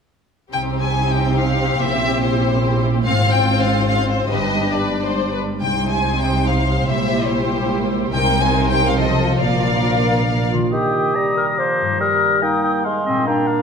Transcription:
0.52 C2 C3 C4 D#4 G4 C5 G5
0.75 C4
0.81 G#5
0.96 D#4
1.10 G5
1.17 C5
1.38 D#4 F5
1.60 C5
1.80 A#1 A#2 E4 E5
2.02 C4
2.22 E4 C5
2.44 C5
2.64 E4
2.85 C5
3.05 G#1 G#2 C4 F4 C5 F5
3.27 C4
3.33 G5
3.47 F4
3.61 F5
3.68 C5
3.88 F4 F5
4.10 C5
4.30 G1 G2 G3 D4 G4 B4 D#5
4.54 D4
4.74 G4 B4 D5
4.97 B4
5.02 C5
5.32 B4
5.40 B4
5.60 C2 C3 D#4 C5 G5
5.83 D#4
5.90 G#5
6.04 G4
6.19 G5
6.26 C5
6.46 D#5 F5
6.68 C5
6.88 A#1 A#2 G3 E4 G4 E5
7.10 E4
7.30 G4 C5
7.51 C5
7.72 E5
7.93 C5
8.12 C2 C3 D#4 A#4 C5 G5
8.35 D#4
8.40 G#5
8.55 G4
8.69 G5
8.77 A#4
8.86 F5
8.97 C3 F3 F4 A4 D#5
9.19 F4 A4
9.40 A#1 A#2 A#4 D5 F5
9.63 D4
9.85 F4
10.06 A#4
10.28 D5
10.50 D#3 F4 A#4
10.58 A#3
10.62 D#4
10.67 A#4
10.72 D#3 G4 G5 D#6
11.15 G3 A#5
11.37 A#4
11.58 F3 C5 D6
11.82 G2
11.86 A#3
11.91 D#4
11.95 A#4
12.00 G3 A#4 A#5 D#6
12.42 A#3 D#4 G5 D#6
12.64 G5
12.84 G#3 F5 C6
13.05 A#2 C4 D#5
13.13 A#3
13.18 F4
13.22 D4 A#4
13.27 A#3 G5 A#5
13.47 F5

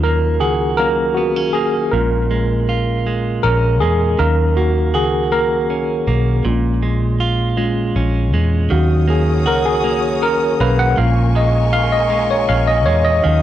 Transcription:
Already playing: D#2 D#3 F#3 C#4 F4 A#4
0.03 A#3 A#4
0.40 C#2 F#4 G#4
0.77 F#3 A#3 C#4 A#4 F5
1.15 B3 F#4
1.36 C#4
1.53 B1 A#3 G#4
1.92 A#1 A#2 G#3 C#4 F4 A#4
2.31 G#3
2.69 F4
3.07 G#3
3.43 A#1 C#4 A#4
3.80 E2 G#3 G#4
4.18 D#2 D#3 F#3 C#4 A#4 F5
4.56 A#3 F#4
4.94 C#2 F#4 G#4
5.32 A#3 A#4
5.70 C#4
6.07 B1 A#3
6.44 A#1 A#2 G#3 C#4 F4
6.83 G#3
7.20 F4
7.57 G#3 C#4 F4
7.96 A#1 C#4
8.34 E2 G#3
8.70 D#2 D#3 F#3 C#4 F#4 C#5 F5 D#6
9.08 A#3 G#4
9.46 C#2 F#4 A#4
9.66 G#4
9.84 A#3
10.22 C#4 A#4
10.60 B1 F#3 A#3 C#4 B4 F5
10.79 F#5
10.96 A#1 A#2 G#3 C#4 F4 A#4 F5 G#5 C#6
11.35 G#3 D#5
11.73 F4 F5
11.92 D#5
12.10 G#3
12.31 C#5
12.49 A#1 C#4 F5
12.67 D#5
12.86 E2 G#3 C#5
13.05 D#5
13.22 D#2 D#3 F#3 C#4 F#4 C#5 F5 D#6

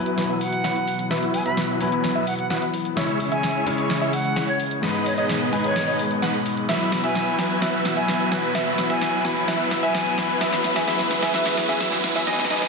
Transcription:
Already playing: B2 E3 F#3 B3 E4 F#4 B4 G#5, riser
0.06 closed hi-hat
0.18 snare, closed hi-hat
0.29 F#3 B3 E4 B4 E5
0.41 F#5, open hi-hat
0.53 closed hi-hat
0.64 F#3 B3 E4 B4 F#5, snare, closed hi-hat
0.76 closed hi-hat
0.88 open hi-hat
0.99 closed hi-hat
1.09 F#3 B3 E4 B4 E5, snare, closed hi-hat
1.22 closed hi-hat
1.34 G#5, open hi-hat
1.46 F#3 B3 E4 B4 E5 B5, closed hi-hat
1.57 snare, closed hi-hat
1.79 F#3 B3 E4 B4 G#5, open hi-hat
1.92 closed hi-hat
2.04 snare, closed hi-hat
2.15 F#3 B3 E4 B4 E5
2.27 F#5, open hi-hat
2.39 F#5, closed hi-hat
2.50 F#3 B3 E4 B4 F#5, snare, closed hi-hat
2.62 closed hi-hat
2.74 open hi-hat
2.85 closed hi-hat
2.96 C#3 G#3 C#4 E4 G#4 C#5 E5, snare, closed hi-hat
3.08 closed hi-hat
3.20 open hi-hat
3.32 G#3 C#4 E4 C#5 E5 G#5, closed hi-hat
3.43 snare, closed hi-hat
3.65 C#3 G#3 C#4 E4 C#5 G#5, open hi-hat
3.78 closed hi-hat
3.90 snare, closed hi-hat
4.01 G#3 C#4 E4 C#5 E5
4.13 F#5, open hi-hat
4.25 closed hi-hat
4.36 G#3 C#4 E4 C#5 F#5, snare, closed hi-hat
4.48 C#5, closed hi-hat
4.60 open hi-hat
4.71 closed hi-hat
4.82 G#2 B2 D#3 G#3 B3 D#4 G#4 B4 D#5, snare, closed hi-hat
4.95 closed hi-hat
5.06 C#5, open hi-hat
5.18 G#3 B3 D#4 B4 C#5 D#5, closed hi-hat
5.29 snare, closed hi-hat
5.51 G#2 G#3 B3 D#4 B4 G#5, open hi-hat
5.64 C#5, closed hi-hat
5.76 snare, closed hi-hat
5.87 G#3 B3 D#4 B4 D#5
5.99 open hi-hat
6.11 closed hi-hat
6.22 G#3 B3 D#4 B4 F#5, snare, closed hi-hat
6.34 closed hi-hat
6.46 open hi-hat
6.57 closed hi-hat
6.68 E3 F#3 B3 E4 F#4 B4 E5, snare, closed hi-hat, shaker
6.81 closed hi-hat
6.92 snare, open hi-hat, shaker
7.04 F#3 B3 E4 B4 E5 G#5, closed hi-hat, shaker
7.15 snare, closed hi-hat, shaker
7.27 shaker
7.37 F#3 B3 E4 B4 G#5, snare, open hi-hat, shaker
7.50 closed hi-hat, shaker
7.61 F#3 B3 E4 B4 E5, snare, closed hi-hat, shaker
7.85 snare, open hi-hat, shaker
7.97 F#3 B3 E4 B4 E5 G#5, closed hi-hat, shaker
8.08 snare, closed hi-hat, shaker
8.20 closed hi-hat, shaker
8.30 F#3 B3 E4 B4 G#5, snare, open hi-hat, shaker
8.43 closed hi-hat, shaker
8.54 F#3 B3 E4 B4 E5, snare, closed hi-hat, shaker
8.67 closed hi-hat
8.78 snare, open hi-hat, shaker
8.90 F#3 B3 E4 B4 E5 G#5, closed hi-hat, shaker
9.01 snare, closed hi-hat, shaker
9.13 shaker
9.23 F#3 B3 E4 B4 G#5, snare, open hi-hat, shaker
9.36 closed hi-hat, shaker
9.47 F#3 B3 E4 B4 E5, snare, closed hi-hat, shaker
9.71 snare, open hi-hat, shaker
9.83 F#3 B3 E4 B4 E5 G#5, closed hi-hat, shaker
9.95 snare, closed hi-hat, shaker
10.06 closed hi-hat, shaker
10.16 F#3 B3 E4 B4 G#5, snare, open hi-hat, shaker
10.29 closed hi-hat, shaker
10.40 C#3 F#3 G#3 B3 E4 G#4 B4 E5, snare, closed hi-hat, shaker
10.53 snare, closed hi-hat
10.64 snare, open hi-hat, shaker
10.76 F#3 B3 E4 B4 E5 G#5, snare, closed hi-hat, shaker
10.86 F#3 B3 E4 B4 E5, snare, closed hi-hat, shaker
10.99 snare, shaker
11.11 snare, open hi-hat, shaker
11.22 F#3 B3 E4 B4 E5 G#5, snare, closed hi-hat, shaker
11.33 F#3 B3 E4 B4 E5, snare, closed hi-hat, shaker
11.46 snare
11.57 snare, open hi-hat, shaker
11.69 F#3 B3 E4 B4 E5 G#5, snare, closed hi-hat, shaker
11.79 F#3 B3 E4 B4 E5, snare, closed hi-hat, shaker
11.92 snare, closed hi-hat, shaker
12.04 snare, open hi-hat, shaker
12.15 F#3 B3 E4 B4 E5 G#5, snare, closed hi-hat, shaker
12.26 B2 D#3 F#3 B3 D#4 B4 D#5 G#5, snare, closed hi-hat, shaker
12.33 snare
12.39 snare, closed hi-hat, shaker
12.44 snare
12.49 F#3 B3 D#4 B4 D#5 G#5, snare, open hi-hat, shaker
12.56 snare
12.62 snare, closed hi-hat, shaker

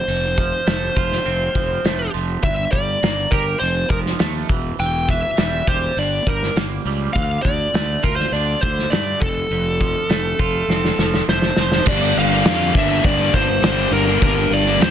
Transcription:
Already playing: C5
0.08 F1 F2, open hi-hat
0.38 F3, kick, open hi-hat
0.66 F1 A3, snare, open hi-hat
0.96 F1 F4, kick, open hi-hat
1.12 snare
1.25 F1 C4, open hi-hat
1.55 F1 F3, kick, open hi-hat
1.84 F1 A3, snare, open hi-hat
2.14 F1 F3, open hi-hat
2.42 G1 G2 E5, kick, open hi-hat
2.72 G1 G3 D5, kick, open hi-hat
3.03 G1 A#3, snare, open hi-hat
3.31 G1 G4 A#4, kick, open hi-hat
3.59 F1 F2 C5, open hi-hat
3.89 F1 F3 A#4, kick, open hi-hat
4.06 snare
4.19 D#2 A3, snare, open hi-hat
4.49 E1 E3, kick, open hi-hat
4.79 E1 E3 G5, open hi-hat
5.09 E3 E5, kick, open hi-hat
5.37 E1 G3, snare, open hi-hat
5.67 E1 G4 C5, kick, open hi-hat
5.97 G1 G2 D5, open hi-hat
6.27 G1 G3 A#4, kick, open hi-hat
6.43 snare
6.56 G1 A#3, snare, open hi-hat
6.85 C#2 G3, open hi-hat
7.13 D2 D3 F5, kick, open hi-hat
7.42 D2 D3 D5, kick, open hi-hat
7.74 D2 A3, snare, open hi-hat
8.03 D2 F4 A#4, kick, open hi-hat
8.16 C5, snare
8.32 D2 D4 D5, open hi-hat
8.61 D2 D3 C5, kick, open hi-hat
8.79 snare
8.90 G2 A3 D5, snare, open hi-hat
9.20 F1 F2 A4, kick, open hi-hat
9.50 F1 F2, open hi-hat
9.81 F3, kick, open hi-hat
10.09 F1 A3, snare, open hi-hat
10.39 F1 F4, kick, open hi-hat
10.68 F1 C4, snare
10.85 snare
10.98 F1 F3, snare
11.14 snare
11.28 F1 A3 C5, snare
11.42 snare
11.56 F1 F3, snare
11.72 snare
11.86 G1 G2 D3 G3 D5, kick, crash
11.90 A#3 D4
12.02 muted overdriven electric guitar stroke
12.15 G1 D3 G3 A#3 D4 F5
12.32 G3 A#3 D4
12.45 F2 G2 D3 G3 A#3 D4, snare, open hi-hat
12.75 G1 D3 G3 A#3 D4 E5, kick
12.89 G3 A#3 D4
13.04 G1 D5, kick, open hi-hat
13.19 G3 A#3 D4
13.33 G1 D3 G3 A#3 D4 C5, kick
13.47 G3 A#3 D4, muted overdriven electric guitar stroke
13.62 G1 G2 D3 G3 A#3 D4, snare, open hi-hat
13.78 G3 A#3 D4
13.91 G1 D3 G3 A#3 D4 A#4
14.08 G3 A#3 D4
14.22 G1 G2 D3 G3 A#3 D4 A#4, kick, open hi-hat
14.37 muted overdriven electric guitar stroke
14.50 G1 D3 G3 A#3 D4 D5
14.65 G3 A#3 D4
14.79 F2 G2 D3 G3 A#3 D4 C5, snare, open hi-hat

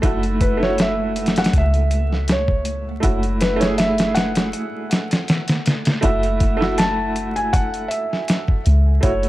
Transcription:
Already playing: A3
0.02 F#1 A3 E4 F#4, kick, closed hi-hat
0.23 closed hi-hat
0.41 B4, kick, closed hi-hat
0.57 A3 E4
0.63 F#4 C#5, snare
0.78 E5, snare, closed hi-hat
1.16 closed hi-hat
1.26 snare, closed hi-hat
1.36 F#5, snare, closed hi-hat
1.44 snare, closed hi-hat
1.53 C#2, kick, closed hi-hat
1.58 E5
1.74 closed hi-hat
1.91 closed hi-hat
2.13 snare
2.28 snare, closed hi-hat
2.32 C#5
2.48 kick
2.65 closed hi-hat
3.00 F#1 A3 E4 F#4, kick, closed hi-hat
3.23 closed hi-hat
3.41 B4, snare, closed hi-hat
3.56 A3 E4 C#5
3.61 G#4, snare, closed hi-hat
3.78 E5, snare, closed hi-hat
3.98 snare, closed hi-hat
4.15 F#5, snare, closed hi-hat
4.35 snare, closed hi-hat
4.53 closed hi-hat
4.91 snare, closed hi-hat
5.11 snare, closed hi-hat
5.28 snare, closed hi-hat
5.48 snare, closed hi-hat
5.66 snare, closed hi-hat
5.85 snare, closed hi-hat
6.01 F#1 A3 E4 F#4 E5, kick, closed hi-hat
6.23 closed hi-hat
6.40 kick, closed hi-hat
6.57 A3 E4
6.62 F#4, snare
6.78 A5, snare, closed hi-hat
7.16 closed hi-hat
7.36 G#5, closed hi-hat
7.53 F#5, kick, closed hi-hat
7.74 closed hi-hat
7.88 E5, closed hi-hat
8.13 snare
8.28 snare, closed hi-hat
8.48 kick
8.66 C#2, closed hi-hat
9.01 F#1 A3 E4 F#4 C#5, kick, closed hi-hat
9.23 closed hi-hat

